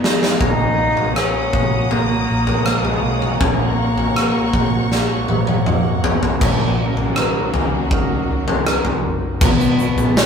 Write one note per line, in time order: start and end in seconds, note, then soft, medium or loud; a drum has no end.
0.00 0.04 G#3 medium
0.00 0.40 G#3 medium
0.00 0.43 B3 medium
0.00 0.22 D#4 soft
0.04 snare medium
0.22 0.40 D#4 soft
0.22 snare medium
0.40 1.49 A#1 medium
0.40 0.76 A#3 medium
0.40 1.15 D#4 loud
0.40 6.37 C#5 medium
0.40 6.37 F#5 medium
0.40 6.37 A#5 medium
0.40 3.38 D#6 medium
0.40 kick medium
0.40 floor tom medium
0.59 0.94 F#4 soft
0.77 1.15 A#3 soft
0.96 1.33 F#4 medium
0.96 floor tom soft
1.16 1.53 A#3 soft
1.16 1.92 C#4 medium
1.16 cross-stick medium
1.34 1.71 F#4 soft
1.53 2.25 A#1 medium
1.53 1.89 A#3 soft
1.53 kick medium
1.53 floor tom medium
1.73 2.08 F#4 medium
1.91 2.26 A#3 medium
1.91 2.67 A#3 medium
1.91 floor tom medium
2.09 2.45 F#4 medium
2.27 3.00 A#1 medium
2.27 2.64 A#3 soft
2.47 2.82 F#4 soft
2.47 floor tom medium
2.66 3.42 G#3 medium
2.66 3.01 A#3 soft
2.66 cross-stick medium
2.84 3.20 F#4 soft
2.84 floor tom medium
3.02 3.38 B1 medium
3.02 3.39 A#3 medium
3.22 3.58 F#4 soft
3.22 floor tom soft
3.40 4.49 A#1 loud
3.40 3.77 A#3 medium
3.40 5.66 A#3 medium
3.40 6.38 C#6 medium
3.40 kick medium
3.40 floor tom loud
3.60 3.97 F#4 soft
3.79 4.16 A#3 medium
3.98 4.35 F#4 medium
3.98 floor tom soft
4.16 4.53 A#3 soft
4.16 cross-stick medium
4.36 4.73 F#4 soft
4.53 5.25 A#1 medium
4.53 4.92 A#3 soft
4.53 kick medium
4.53 floor tom medium
4.75 5.10 F#4 medium
4.92 5.30 A#3 medium
4.92 snare soft
5.12 5.49 F#4 soft
5.28 6.00 A#1 medium
5.28 5.67 A#3 soft
5.28 high tom medium
5.47 5.85 F#4 soft
5.47 high tom medium
5.66 6.05 A#3 medium
5.66 mid tom medium
5.87 6.22 F#4 medium
6.04 6.42 A#3 soft
6.04 floor tom medium
6.23 6.41 F#4 soft
6.23 floor tom medium
6.41 7.50 A#1 loud
6.41 9.38 D#3 medium
6.41 9.38 F#3 medium
6.41 9.38 A#3 medium
6.41 9.38 C#4 medium
6.41 9.38 F#4 medium
6.41 kick loud
6.41 floor tom loud
6.41 crash medium
6.97 floor tom soft
7.16 7.89 D#4 soft
7.16 7.89 F#4 soft
7.16 7.90 A#4 soft
7.16 cross-stick medium
7.54 8.25 C#2 medium
7.54 floor tom medium
7.91 8.64 D#4 soft
7.91 8.64 F#4 soft
7.91 8.65 A#4 medium
7.91 kick medium
8.29 9.00 C#2 medium
8.48 floor tom medium
8.66 9.39 D#4 soft
8.66 9.39 F#4 soft
8.66 9.39 A#4 soft
8.66 cross-stick medium
8.85 floor tom medium
9.04 9.39 F#1 medium
9.41 9.93 B1 loud
9.41 10.16 B3 medium
9.41 10.18 B3 loud
9.41 kick loud
9.41 floor tom loud
9.41 crash loud
9.41 shaker medium
9.61 shaker medium
9.79 10.26 F#4 medium
9.79 shaker medium
9.97 10.26 A#1 medium
9.97 floor tom medium
9.97 shaker soft
10.16 10.26 B3 medium
10.16 10.26 C#4 loud
10.16 snare loud
10.16 shaker medium